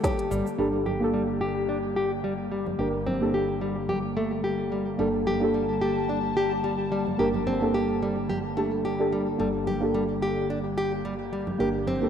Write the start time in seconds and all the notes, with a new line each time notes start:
Already playing: D3 G3 A#3 D4 G4 A4 A5
0.04 G4, kick, snare, closed hi-hat, cabasa
0.19 closed hi-hat
0.31 G1 G3, cabasa
0.47 cabasa
0.58 G1 D3 G3 A#3 D4 G4 A4
0.86 G4, low conga
1.00 A#3 D4 G4 A4
1.14 G3
1.41 G4
1.69 D4
1.96 G4
2.24 G3
2.52 G3
2.67 low conga
2.78 G1 A#3 D4 G4 A#4
3.07 C4, low conga
3.21 A#3 D4 G4 A4
3.34 G4
3.61 G3
3.89 G4, low conga
4.17 A3
4.44 G4
4.72 G3
4.98 G1 G3 A#3 D4 G4 A4 A5
5.27 G4, low conga
5.40 A#3 D4 G4
5.44 A4
5.54 G3
5.81 G4
6.09 D4
6.37 G4
6.64 G3
6.92 G3
7.07 low conga
7.18 G1 A#3 D4 G4 A#4
7.34 low conga
7.46 C4, low conga
7.61 A#3 D4 G4 A4
7.74 G4
8.02 G3
8.29 G4, low conga
8.57 A3 D4 G4 A4
8.85 G4
8.99 D4 G4 A4
9.12 G3
9.38 G1 G3 A#3 D4 G4 A4
9.67 G4, low conga
9.80 A#3 D4 G4 A4
9.94 G3
10.22 G4
10.50 D4
10.78 G4
11.05 G3
11.33 G3
11.47 low conga
11.58 G1 A#3 D4 G4 A#4
11.87 C4, low conga
12.02 A#3 D4 G4 A4